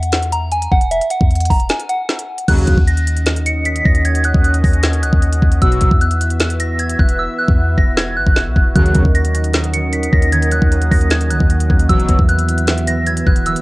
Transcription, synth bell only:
Already playing: F#5
0.32 A#5
0.52 G#5
0.72 F#5
0.91 E5
1.11 F#5
1.50 A#5
1.70 G#5
1.89 F#5
2.48 F#6
2.87 A#6
3.46 C#7
3.66 B6
3.85 A#6
4.05 G#6
4.25 F#6
4.64 A#6
4.83 G#6
5.03 F#6
5.62 E6
6.01 F#6
6.60 A#6
6.79 G#6
6.99 F#6
7.19 E6
7.38 F#6
7.77 A#6
7.97 G#6
8.17 F#6
8.76 F#6
9.15 A#6
9.74 C#7
9.93 B6
10.13 A#6
10.33 G#6
10.52 F#6
10.91 A#6
11.11 G#6
11.30 F#6
11.89 E6
12.29 F#6
12.87 A#6
13.07 G#6
13.27 F#6
13.46 E6

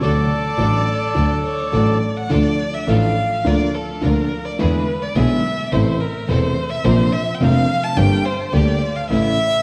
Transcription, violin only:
0.02 D5
1.44 C#5
1.73 D5
2.17 F#5
2.31 D5
2.74 E5
2.89 F5
3.46 D5
3.74 A4
4.02 A#4
4.45 D5
4.59 B4
5.02 D5
5.16 E5
5.72 C5
6.01 A#4
6.29 C5
6.70 E5
6.85 C5
7.12 E5
7.34 G5
7.41 F5
7.83 A5
7.96 G5
8.25 C5
8.53 D5
8.96 F5
9.10 E5

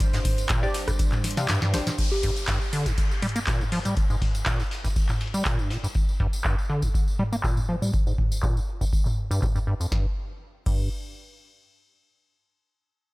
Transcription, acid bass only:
0.13 G#2
0.50 A#2
0.63 G2
0.88 G2
1.37 C3
1.49 G2
1.62 G2
1.74 G1
1.87 A#2
2.23 G2
2.48 G2
2.73 D3
2.86 G2
3.22 G3
3.36 A#3
3.47 A#2
3.60 G2
3.72 F3
3.85 G3
4.10 G#2
4.46 A#2
4.60 G2
4.84 G2
5.34 G3
5.46 A#2
5.59 G2
5.70 A#2
5.84 G2
6.20 G2
6.45 G2
6.70 D3
6.83 G2
7.19 G3
7.32 A#3
7.44 A#2
7.57 G2
7.69 F3
7.82 G3
8.07 G#2
8.43 A#2
8.56 G2
8.81 G2
9.31 G2
9.42 G2
9.55 G2
9.67 G2
9.80 F2
9.92 G2
10.66 G2

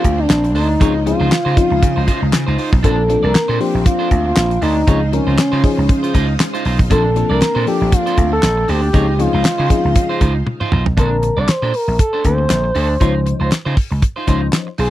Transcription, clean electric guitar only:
0.04 muted clean electric guitar stroke
0.18 muted clean electric guitar stroke
0.44 muted clean electric guitar stroke
0.55 D4 A4 C5
0.69 muted clean electric guitar stroke
0.80 D#4 F4 C#5
0.95 muted clean electric guitar stroke
1.06 muted clean electric guitar stroke
1.20 D#4 F4 C5
1.31 muted clean electric guitar stroke
1.45 D#4 F4 C5
1.57 muted clean electric guitar stroke
1.71 muted clean electric guitar stroke
1.82 muted clean electric guitar stroke
1.96 D#4 F4 C5
2.07 D#4 F4 C5
2.21 muted clean electric guitar stroke
2.32 muted clean electric guitar stroke
2.47 D#4 F4 C5
2.57 D#4 F4 C5
2.72 muted clean electric guitar stroke
2.83 D4 A4 C5
2.98 muted clean electric guitar stroke
3.09 muted clean electric guitar stroke
3.23 D4 A4 D5
3.34 muted clean electric guitar stroke
3.48 D4 A4 C5
3.60 muted clean electric guitar stroke
3.74 muted clean electric guitar stroke
3.85 muted clean electric guitar stroke
3.99 D4 A4 C5
4.10 muted clean electric guitar stroke
4.25 muted clean electric guitar stroke
4.50 muted clean electric guitar stroke
4.62 D4 A4 C5
4.76 muted clean electric guitar stroke
4.87 D#4 F4 C#5
5.02 muted clean electric guitar stroke
5.13 muted clean electric guitar stroke
5.27 D#4 F4 C5
5.52 D#4 F4 C5
5.63 muted clean electric guitar stroke
5.77 muted clean electric guitar stroke
5.88 muted clean electric guitar stroke
6.03 D#4 F4 C5
6.14 D#4 F4 C5
6.28 muted clean electric guitar stroke
6.39 muted clean electric guitar stroke
6.54 D#4 F4 C5
6.65 D#4 F4 C5
6.79 muted clean electric guitar stroke
6.90 D4 A4 C5
7.05 muted clean electric guitar stroke
7.16 muted clean electric guitar stroke
7.30 D4 A4 D5
7.41 muted clean electric guitar stroke
7.55 D4 A4 C5
7.66 muted clean electric guitar stroke
7.81 muted clean electric guitar stroke
7.92 muted clean electric guitar stroke
8.06 D4 A4 C5
8.32 muted clean electric guitar stroke
8.57 muted clean electric guitar stroke
8.68 D4 A4 C5
8.83 muted clean electric guitar stroke
8.93 D#4 F4 C#5
9.08 muted clean electric guitar stroke
9.19 muted clean electric guitar stroke
9.33 D#4 F4 C5
9.44 muted clean electric guitar stroke
9.58 D#4 F4 C5
9.70 muted clean electric guitar stroke
9.84 muted clean electric guitar stroke
9.95 muted clean electric guitar stroke
10.09 D#4 F4 C5
10.21 D#4 F4 C5
10.35 muted clean electric guitar stroke
10.46 muted clean electric guitar stroke
10.60 D#4 F4 C5
10.72 D#4 F4 C5
10.86 muted clean electric guitar stroke
10.97 D4 A4 C5
11.11 muted clean electric guitar stroke
11.22 muted clean electric guitar stroke
11.37 D4 A4 D5
11.48 muted clean electric guitar stroke
11.62 D4 A4 C5
11.74 muted clean electric guitar stroke
11.88 muted clean electric guitar stroke
11.99 muted clean electric guitar stroke
12.13 D4 A4 C5
12.38 muted clean electric guitar stroke
12.64 muted clean electric guitar stroke
12.75 D4 A4 C5
12.89 muted clean electric guitar stroke
13.00 D#4 F4 C#5
13.15 muted clean electric guitar stroke
13.26 muted clean electric guitar stroke
13.40 D#4 F4 C5
13.51 muted clean electric guitar stroke
13.65 D#4 F4 C5
13.76 muted clean electric guitar stroke
13.91 muted clean electric guitar stroke
14.02 muted clean electric guitar stroke
14.16 D#4 F4 C5
14.27 D#4 F4 C5
14.42 muted clean electric guitar stroke
14.67 muted clean electric guitar stroke
14.78 D#4 F4 C5

